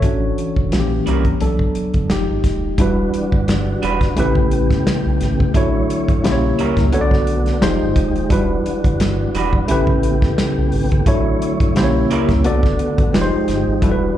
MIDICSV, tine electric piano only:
0, 0, Header, 1, 2, 480
1, 0, Start_track
1, 0, Tempo, 689655
1, 19, Time_signature, 4, 2, 24, 8
1, 9867, End_track
2, 0, Start_track
2, 0, Title_t, "Tine electric piano"
2, 0, Program_c, 0, 4
2, 0, Control_c, 0, 64, 127
2, 0, Note_on_c, 0, 69, 50
2, 0, Note_on_c, 0, 73, 60
2, 18, Note_on_c, 0, 52, 60
2, 24, Note_on_c, 0, 61, 62
2, 27, Control_c, 0, 64, 0
2, 28, Note_on_c, 0, 62, 60
2, 31, Note_on_c, 0, 66, 72
2, 129, Control_c, 0, 64, 127
2, 148, Note_off_c, 0, 73, 0
2, 149, Note_off_c, 0, 69, 0
2, 492, Note_off_c, 0, 52, 0
2, 499, Note_off_c, 0, 61, 0
2, 500, Note_on_c, 0, 52, 70
2, 503, Note_off_c, 0, 62, 0
2, 503, Note_off_c, 0, 66, 0
2, 503, Note_on_c, 0, 58, 64
2, 507, Note_on_c, 0, 61, 59
2, 508, Control_c, 0, 64, 0
2, 511, Note_on_c, 0, 66, 57
2, 556, Note_off_c, 0, 66, 0
2, 556, Note_on_c, 0, 67, 73
2, 611, Control_c, 0, 64, 127
2, 977, Note_on_c, 0, 54, 68
2, 979, Note_on_c, 0, 59, 61
2, 980, Note_off_c, 0, 52, 0
2, 981, Note_off_c, 0, 58, 0
2, 983, Note_off_c, 0, 61, 0
2, 984, Note_on_c, 0, 62, 66
2, 986, Control_c, 0, 64, 0
2, 986, Note_on_c, 0, 69, 74
2, 1008, Note_off_c, 0, 67, 0
2, 1115, Control_c, 0, 64, 127
2, 1458, Note_off_c, 0, 54, 0
2, 1459, Note_off_c, 0, 59, 0
2, 1459, Note_on_c, 0, 53, 64
2, 1461, Note_off_c, 0, 62, 0
2, 1463, Note_off_c, 0, 69, 0
2, 1464, Note_on_c, 0, 56, 60
2, 1467, Note_on_c, 0, 63, 62
2, 1469, Control_c, 0, 64, 0
2, 1471, Note_on_c, 0, 67, 79
2, 1611, Control_c, 0, 64, 127
2, 1935, Note_on_c, 0, 55, 75
2, 1939, Note_off_c, 0, 53, 0
2, 1941, Note_off_c, 0, 56, 0
2, 1941, Note_on_c, 0, 62, 68
2, 1943, Note_off_c, 0, 63, 0
2, 1945, Note_off_c, 0, 67, 0
2, 1946, Note_on_c, 0, 64, 69
2, 1947, Control_c, 0, 64, 0
2, 1953, Note_on_c, 0, 66, 65
2, 1958, Note_on_c, 0, 71, 78
2, 2059, Control_c, 0, 64, 127
2, 2878, Note_off_c, 0, 55, 0
2, 2881, Note_off_c, 0, 62, 0
2, 2883, Note_off_c, 0, 64, 0
2, 2887, Note_off_c, 0, 66, 0
2, 2890, Note_off_c, 0, 71, 0
2, 2897, Note_on_c, 0, 57, 78
2, 2904, Note_on_c, 0, 61, 69
2, 2909, Control_c, 0, 64, 0
2, 2911, Note_on_c, 0, 64, 70
2, 2916, Note_on_c, 0, 67, 72
2, 2921, Note_on_c, 0, 71, 90
2, 3015, Control_c, 0, 64, 127
2, 3839, Note_off_c, 0, 57, 0
2, 3843, Note_off_c, 0, 61, 0
2, 3846, Note_off_c, 0, 64, 0
2, 3848, Note_off_c, 0, 67, 0
2, 3851, Note_off_c, 0, 71, 0
2, 3863, Note_on_c, 0, 57, 71
2, 3867, Note_on_c, 0, 62, 66
2, 3868, Control_c, 0, 64, 0
2, 3870, Note_on_c, 0, 64, 64
2, 3873, Note_on_c, 0, 66, 69
2, 3877, Note_on_c, 0, 73, 80
2, 3969, Control_c, 0, 64, 127
2, 4337, Note_off_c, 0, 64, 0
2, 4341, Note_off_c, 0, 57, 0
2, 4341, Note_on_c, 0, 58, 78
2, 4343, Note_off_c, 0, 62, 0
2, 4343, Note_on_c, 0, 61, 73
2, 4345, Note_on_c, 0, 64, 65
2, 4346, Note_off_c, 0, 66, 0
2, 4348, Note_off_c, 0, 73, 0
2, 4349, Control_c, 0, 64, 0
2, 4350, Note_on_c, 0, 67, 70
2, 4353, Note_on_c, 0, 72, 67
2, 4397, Note_off_c, 0, 72, 0
2, 4397, Note_on_c, 0, 73, 86
2, 4481, Control_c, 0, 64, 127
2, 4820, Note_off_c, 0, 58, 0
2, 4821, Note_off_c, 0, 61, 0
2, 4822, Note_off_c, 0, 64, 0
2, 4822, Note_on_c, 0, 59, 80
2, 4824, Note_off_c, 0, 67, 0
2, 4824, Note_off_c, 0, 73, 0
2, 4824, Note_on_c, 0, 62, 70
2, 4828, Note_on_c, 0, 66, 75
2, 4829, Control_c, 0, 64, 0
2, 4831, Note_on_c, 0, 69, 73
2, 4832, Note_on_c, 0, 73, 70
2, 4876, Note_off_c, 0, 73, 0
2, 4880, Note_on_c, 0, 74, 86
2, 4935, Control_c, 0, 64, 127
2, 5297, Note_on_c, 0, 56, 77
2, 5301, Note_off_c, 0, 59, 0
2, 5301, Note_on_c, 0, 63, 74
2, 5302, Note_off_c, 0, 62, 0
2, 5303, Note_on_c, 0, 65, 75
2, 5304, Note_off_c, 0, 66, 0
2, 5305, Note_off_c, 0, 69, 0
2, 5305, Note_on_c, 0, 67, 68
2, 5308, Control_c, 0, 64, 0
2, 5309, Note_on_c, 0, 72, 84
2, 5329, Note_off_c, 0, 74, 0
2, 5438, Control_c, 0, 64, 127
2, 5773, Note_on_c, 0, 55, 72
2, 5778, Note_off_c, 0, 56, 0
2, 5778, Note_on_c, 0, 62, 66
2, 5780, Note_off_c, 0, 63, 0
2, 5781, Note_off_c, 0, 65, 0
2, 5782, Note_off_c, 0, 67, 0
2, 5784, Note_off_c, 0, 72, 0
2, 5784, Note_on_c, 0, 64, 67
2, 5788, Control_c, 0, 64, 0
2, 5790, Note_on_c, 0, 66, 65
2, 5795, Note_on_c, 0, 71, 82
2, 5928, Control_c, 0, 64, 127
2, 6717, Note_off_c, 0, 55, 0
2, 6719, Note_off_c, 0, 62, 0
2, 6722, Note_off_c, 0, 64, 0
2, 6726, Note_off_c, 0, 66, 0
2, 6728, Note_off_c, 0, 71, 0
2, 6735, Note_on_c, 0, 57, 77
2, 6740, Note_on_c, 0, 61, 74
2, 6746, Note_on_c, 0, 64, 75
2, 6748, Control_c, 0, 64, 0
2, 6752, Note_on_c, 0, 67, 73
2, 6760, Note_on_c, 0, 71, 88
2, 6872, Control_c, 0, 64, 127
2, 7678, Note_off_c, 0, 57, 0
2, 7680, Note_off_c, 0, 61, 0
2, 7683, Note_off_c, 0, 64, 0
2, 7687, Note_off_c, 0, 67, 0
2, 7691, Note_off_c, 0, 71, 0
2, 7703, Note_on_c, 0, 57, 76
2, 7704, Note_on_c, 0, 62, 67
2, 7708, Note_on_c, 0, 64, 68
2, 7709, Control_c, 0, 64, 0
2, 7711, Note_on_c, 0, 66, 64
2, 7713, Note_on_c, 0, 73, 75
2, 7817, Control_c, 0, 64, 127
2, 8180, Note_off_c, 0, 64, 0
2, 8181, Note_off_c, 0, 57, 0
2, 8181, Note_off_c, 0, 62, 0
2, 8183, Note_on_c, 0, 58, 73
2, 8185, Note_off_c, 0, 66, 0
2, 8186, Note_off_c, 0, 73, 0
2, 8187, Control_c, 0, 64, 0
2, 8187, Note_on_c, 0, 61, 69
2, 8188, Note_on_c, 0, 64, 69
2, 8192, Note_on_c, 0, 67, 72
2, 8195, Note_on_c, 0, 72, 69
2, 8238, Note_off_c, 0, 72, 0
2, 8240, Note_on_c, 0, 73, 84
2, 8312, Control_c, 0, 64, 127
2, 8661, Note_off_c, 0, 58, 0
2, 8663, Note_off_c, 0, 61, 0
2, 8664, Note_off_c, 0, 64, 0
2, 8665, Note_on_c, 0, 59, 78
2, 8666, Note_off_c, 0, 67, 0
2, 8667, Control_c, 0, 64, 0
2, 8668, Note_on_c, 0, 62, 76
2, 8671, Note_on_c, 0, 66, 68
2, 8673, Note_on_c, 0, 69, 71
2, 8674, Note_on_c, 0, 74, 81
2, 8690, Note_off_c, 0, 73, 0
2, 8796, Control_c, 0, 64, 127
2, 9142, Note_off_c, 0, 59, 0
2, 9143, Note_on_c, 0, 56, 76
2, 9144, Note_off_c, 0, 62, 0
2, 9145, Note_off_c, 0, 66, 0
2, 9146, Note_off_c, 0, 69, 0
2, 9146, Note_on_c, 0, 63, 69
2, 9147, Note_off_c, 0, 74, 0
2, 9147, Control_c, 0, 64, 0
2, 9148, Note_on_c, 0, 65, 68
2, 9150, Note_on_c, 0, 67, 70
2, 9155, Note_on_c, 0, 71, 67
2, 9198, Note_off_c, 0, 71, 0
2, 9198, Note_on_c, 0, 72, 88
2, 9277, Control_c, 0, 64, 127
2, 9617, Note_on_c, 0, 55, 71
2, 9621, Note_off_c, 0, 56, 0
2, 9622, Note_off_c, 0, 63, 0
2, 9622, Note_on_c, 0, 62, 66
2, 9624, Note_off_c, 0, 65, 0
2, 9625, Note_off_c, 0, 67, 0
2, 9628, Note_on_c, 0, 64, 71
2, 9629, Control_c, 0, 64, 0
2, 9634, Note_on_c, 0, 66, 66
2, 9641, Note_on_c, 0, 69, 65
2, 9648, Note_off_c, 0, 72, 0
2, 9680, Note_off_c, 0, 69, 0
2, 9685, Note_on_c, 0, 71, 82
2, 9750, Control_c, 0, 64, 127
2, 9867, Note_off_c, 0, 55, 0
2, 9867, Note_off_c, 0, 62, 0
2, 9867, Note_off_c, 0, 64, 0
2, 9867, Note_off_c, 0, 66, 0
2, 9867, Note_off_c, 0, 71, 0
2, 9867, End_track
0, 0, End_of_file